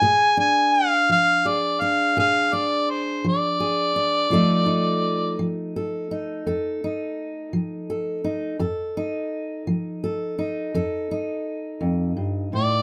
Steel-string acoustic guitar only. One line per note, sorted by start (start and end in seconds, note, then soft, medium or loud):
0.01 0.66 A#2 medium
0.01 1.44 G#4 medium
0.37 1.80 D4 medium
1.09 1.74 F3 medium
1.45 2.16 G#4 medium
1.82 2.52 D4 medium
2.17 2.81 A#2 medium
2.17 3.59 G#4 medium
2.53 3.95 D4 medium
3.24 3.89 F3 medium
3.60 4.27 G#4 medium
3.96 4.27 D4 medium
4.30 4.95 F2 medium
4.30 5.39 F3 medium
4.30 8.57 A3 medium
4.30 4.66 D#4 medium
4.30 5.76 A4 medium
4.66 6.11 D#4 medium
5.39 6.03 F3 medium
5.76 6.47 A4 medium
6.11 6.82 D#4 medium
6.46 7.11 F2 medium
6.46 7.89 A4 medium
6.84 8.23 D#4 medium
7.53 8.18 F3 medium
7.90 8.57 A4 medium
8.24 8.56 D#4 medium
8.59 9.25 F2 medium
8.59 10.02 A4 medium
8.97 10.37 D#4 medium
9.67 10.32 F3 medium
10.04 10.74 A4 medium
10.39 11.10 D#4 medium
10.74 11.39 F2 medium
10.74 12.82 A4 medium
11.11 12.82 D#4 medium
11.81 12.16 F2 medium
12.17 12.53 G2 medium
12.53 12.82 A2 medium